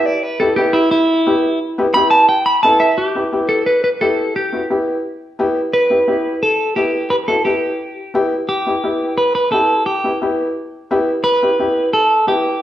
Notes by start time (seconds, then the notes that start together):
0.06 D5
0.23 B4
0.40 B3 E4 G4 A4
0.56 B3 E4 G4
0.73 E4
0.91 E4
1.26 B3 E4 G4
1.78 B3 E4 G4
1.94 B3 E4 G4 B5
2.10 A5
2.29 G5
2.46 B5
2.63 B3 E4 A4 A5
2.80 E5
2.98 G4
3.15 B3 E4 G4
3.32 B3 E4 G4
3.49 A4
3.66 B4
3.84 B4
4.01 B3 E4 G4 A4
4.36 G4
4.52 B3 E4 F#4
4.70 B3 E4 G4
5.39 B3 E4 G4
5.73 B4
5.90 B3 E4 G4
6.07 B3 E4 G4
6.43 A4
6.76 B3 E4 G4
7.10 B4
7.28 B3 E4 F#4 A4
7.45 B3 E4 G4
8.14 B3 E4 G4
8.49 G4
8.67 B3 E4 G4
8.83 B3 E4 G4
9.18 B4
9.35 B4
9.52 B3 E4 G4 A4
9.86 G4
10.04 B3 E4 G4
10.22 B3 E4 G4
10.91 B3 E4 G4
11.24 B4
11.42 B3 E4 G4
11.59 B3 E4 G4
11.93 A4
12.27 B3 E4 G4